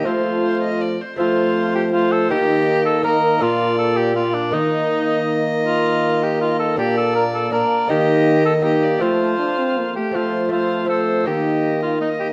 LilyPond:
<<
  \new Staff \with { instrumentName = "Violin" } { \time 3/4 \key f \mixolydian \tempo 4 = 161 c''4 c''8 ees''8 d''8 c''8 | c''2 c''4 | ees''2 ees''4 | d''2 d''4 |
ees''2.~ | ees''2. | d''2 d''4 | ees''2 ees''8 d''8 |
c''2~ c''8 r8 | c''4 c''4 c''4 | ees''2 ees''4 | }
  \new Staff \with { instrumentName = "Cor anglais" } { \time 3/4 \key f \mixolydian f'2~ f'8 r8 | f'4. g'8 f'8 a'8 | g'4. a'8 bes'4 | f'4 a'8 g'8 f'8 d'8 |
ees'2~ ees'8 r8 | f'4. g'8 f'8 a'8 | g'8 a'8 bes'8 a'8 bes'4 | g'4. a'8 g'4 |
f'2~ f'8 g'8 | f'4 f'4 a'4 | g'4. f'8 ees'8 g'8 | }
  \new Staff \with { instrumentName = "Lute" } { \time 3/4 \key f \mixolydian << { <a c'>2. | <a c'>2. | <bes ees'>2 <bes ees'>4 | <bes d'>2. |
<bes ees'>2.~ | <bes ees'>2. | <bes d'>2 <bes d'>4 | <bes ees'>2 <bes ees'>4 |
<a c'>2. | <a c'>4 <a c'>4 <a c'>4 | <bes ees'>2. | } \\ { f2~ f8 r8 | f2. | ees2. | bes,2. |
ees2.~ | ees2. | bes,2~ bes,16 r8. | ees2. |
f2~ f8 r8 | f2. | ees2. | } >> }
  \new Staff \with { instrumentName = "Trombone" } { \time 3/4 \key f \mixolydian a2~ a8 r8 | a2 a4 | bes2 bes4 | bes2 bes4 |
bes2.~ | bes2. | bes2 bes4 | bes4. r8 bes4 |
a4 d'8 c'8 bes8 a8 | a4 a4 a4 | bes2 bes4 | }
  \new Staff \with { instrumentName = "Bassoon" } { \clef bass \time 3/4 \key f \mixolydian f2~ f8 r8 | f2. | ees2. | bes,2. |
ees2.~ | ees2. | bes,2~ bes,16 r8. | ees2. |
f2~ f8 r8 | f2. | ees2. | }
>>